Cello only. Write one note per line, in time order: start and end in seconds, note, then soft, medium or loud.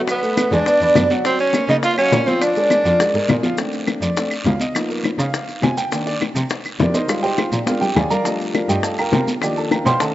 0.52 0.60 E2 loud
0.81 0.87 E2 medium
0.96 1.04 F#2 medium
1.69 1.77 C#3 loud
2.12 2.20 A#2 loud
2.85 2.93 F2 loud
3.14 3.20 G#2 medium
3.29 3.37 A#2 medium
4.01 4.09 F2 medium
4.45 4.53 C#2 loud
5.19 5.27 C#3 loud
5.62 5.70 C3 medium
6.35 6.43 C3 medium
6.79 6.87 F2 medium
7.52 7.60 A#2 medium
7.96 8.04 D#2 medium
8.69 8.77 G2 loud
9.12 9.20 C3 medium
9.86 9.94 B2 loud